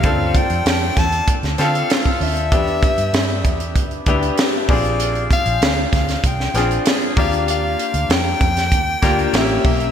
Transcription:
0.00 0.39 D2 medium
0.00 1.06 C4 medium
0.00 0.38 F5 medium
0.00 kick loud
0.00 closed hi-hat medium
0.04 1.06 D4 medium
0.04 1.06 F4 medium
0.04 1.07 A4 medium
0.35 1.00 G5 loud
0.35 kick medium
0.35 closed hi-hat medium
0.50 0.62 F2 medium
0.50 closed hi-hat medium
0.66 0.89 F2 medium
0.66 snare loud
0.66 closed hi-hat medium
0.96 1.20 E2 medium
0.96 1.32 A5 medium
0.96 kick medium
0.96 snare soft
0.96 closed hi-hat medium
1.12 closed hi-hat medium
1.28 kick medium
1.28 closed hi-hat medium
1.43 1.55 D2 medium
1.43 snare soft
1.43 closed hi-hat soft
1.58 1.82 D3 medium
1.58 2.35 C4 medium
1.58 2.35 D4 medium
1.58 2.36 F4 medium
1.58 2.36 A4 medium
1.58 2.18 F5 medium
1.58 snare soft
1.58 closed hi-hat medium
1.75 closed hi-hat soft
1.90 snare loud
1.90 closed hi-hat medium
2.05 kick medium
2.05 closed hi-hat soft
2.21 2.52 D#2 medium
2.21 4.03 E5 loud
2.21 open hi-hat medium
2.37 closed hi-hat soft
2.52 2.87 E2 medium
2.52 3.54 B3 medium
2.52 3.54 D4 medium
2.52 3.54 E4 medium
2.52 3.55 G4 medium
2.52 kick loud
2.52 closed hi-hat medium
2.67 closed hi-hat soft
2.83 kick medium
2.83 closed hi-hat medium
2.98 3.10 G2 medium
2.98 closed hi-hat medium
3.13 3.44 G2 medium
3.13 snare loud
3.13 closed hi-hat medium
3.30 closed hi-hat soft
3.44 3.75 E2 medium
3.44 kick medium
3.44 closed hi-hat medium
3.60 closed hi-hat medium
3.75 3.99 D2 medium
3.75 kick medium
3.75 closed hi-hat medium
3.91 closed hi-hat soft
4.06 4.30 D2 medium
4.06 4.69 B3 medium
4.06 4.68 D4 medium
4.06 4.69 E4 medium
4.06 4.69 G4 medium
4.06 kick medium
4.06 closed hi-hat medium
4.23 closed hi-hat soft
4.38 snare loud
4.38 closed hi-hat medium
4.68 5.27 A#1 medium
4.68 5.71 C4 medium
4.68 5.71 D4 medium
4.68 5.72 F4 medium
4.68 5.72 G#4 medium
4.68 5.27 D5 medium
4.68 kick loud
4.68 open hi-hat medium
4.84 closed hi-hat soft
5.00 closed hi-hat medium
5.15 closed hi-hat soft
5.31 5.90 F5 loud
5.31 kick medium
5.31 closed hi-hat medium
5.46 5.58 A#1 medium
5.46 closed hi-hat medium
5.61 5.85 D2 medium
5.61 snare loud
5.61 closed hi-hat medium
5.93 6.16 D2 medium
5.93 6.28 F5 medium
5.93 kick medium
5.93 snare soft
5.93 closed hi-hat medium
6.09 snare soft
6.09 closed hi-hat medium
6.24 6.47 C2 medium
6.24 6.87 G5 medium
6.24 kick medium
6.24 closed hi-hat medium
6.40 snare soft
6.54 6.77 A#1 medium
6.54 7.17 C4 medium
6.54 7.16 D4 medium
6.54 7.16 F4 medium
6.54 7.17 G#4 medium
6.54 snare soft
6.54 closed hi-hat medium
6.71 closed hi-hat soft
6.86 snare loud
6.86 closed hi-hat loud
7.02 closed hi-hat soft
7.17 7.75 D#2 medium
7.17 8.19 A#3 medium
7.17 8.19 D4 medium
7.17 8.20 F4 medium
7.17 8.20 G4 medium
7.17 7.47 F5 medium
7.17 kick loud
7.17 open hi-hat medium
7.33 closed hi-hat soft
7.48 8.13 F5 medium
7.48 closed hi-hat medium
7.79 closed hi-hat medium
7.94 8.06 D2 medium
7.94 closed hi-hat medium
8.09 8.33 F2 medium
8.09 9.35 G5 loud
8.09 snare loud
8.09 closed hi-hat medium
8.26 closed hi-hat soft
8.41 8.72 F2 medium
8.41 kick medium
8.41 closed hi-hat medium
8.57 snare soft
8.57 closed hi-hat medium
8.72 8.95 D#2 medium
8.72 kick medium
8.72 closed hi-hat medium
9.02 9.26 D2 medium
9.02 9.32 A#3 medium
9.02 9.34 D4 medium
9.02 9.34 F4 medium
9.02 9.33 G4 medium
9.02 kick medium
9.02 snare soft
9.02 closed hi-hat medium
9.19 closed hi-hat soft
9.33 9.57 A1 medium
9.33 9.85 A#3 medium
9.33 9.85 C#4 medium
9.33 9.85 E4 medium
9.33 9.85 G4 medium
9.33 9.91 E5 medium
9.33 snare loud
9.33 closed hi-hat medium
9.50 closed hi-hat soft
9.64 9.88 B1 medium
9.64 kick medium
9.64 open hi-hat medium
9.80 closed hi-hat soft

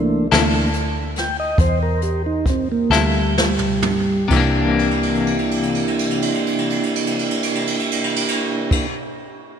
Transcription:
0.00 0.28 C2 medium
0.00 0.27 E3 medium
0.00 0.27 A3 soft
0.00 0.27 A#3 soft
0.00 0.28 D4 medium
0.32 1.54 D2 medium
0.32 0.58 C3 medium
0.32 0.69 E3 soft
0.32 0.70 A3 soft
0.32 0.70 A#3 soft
0.32 0.57 A#3 medium
0.32 0.70 D4 medium
0.32 0.57 E4 medium
0.32 0.57 A4 medium
0.32 snare loud
0.32 closed hi-hat medium
0.73 closed hi-hat medium
1.16 1.37 G5 medium
1.16 snare soft
1.16 closed hi-hat soft
1.40 1.58 D#5 medium
1.58 2.86 E2 medium
1.58 1.79 C5 medium
1.58 kick loud
1.58 closed hi-hat medium
1.83 2.01 A#4 medium
2.02 2.23 G4 medium
2.02 closed hi-hat medium
2.26 2.45 D#4 medium
2.46 kick medium
2.46 closed hi-hat medium
2.50 2.68 C4 medium
2.72 2.91 A#3 medium
2.90 4.26 D2 medium
2.90 3.19 C3 soft
2.90 3.36 G3 medium
2.90 3.18 A#3 soft
2.90 3.18 E4 medium
2.90 3.18 A4 medium
2.90 snare medium
3.38 4.29 G3 loud
3.38 snare medium
3.59 mid tom medium
3.83 floor tom medium
4.28 8.86 C2 medium
4.28 8.89 C3 medium
4.28 8.86 A#3 medium
4.28 8.87 D4 medium
4.28 8.86 E4 medium
4.28 8.86 G4 medium
4.28 kick medium
4.28 crash medium
4.32 8.91 E3 medium
4.32 8.93 A#3 medium
4.40 8.95 D4 medium
4.79 crash soft
4.91 ride soft
5.03 crash soft
5.15 ride soft
5.27 crash soft
5.39 ride soft
5.51 crash medium
5.63 ride medium
5.75 crash soft
5.88 ride medium
5.99 crash medium
6.11 ride medium
6.22 crash medium
6.35 ride medium
6.47 crash medium
6.58 ride medium
6.70 crash medium
6.83 ride medium
6.96 crash medium
7.07 ride medium
7.19 crash medium
7.31 ride medium
7.43 crash medium
7.55 ride medium
7.67 crash medium
7.80 ride medium
7.92 crash medium
8.04 ride medium
8.16 crash medium
8.28 ride medium
8.71 kick loud
8.71 crash medium

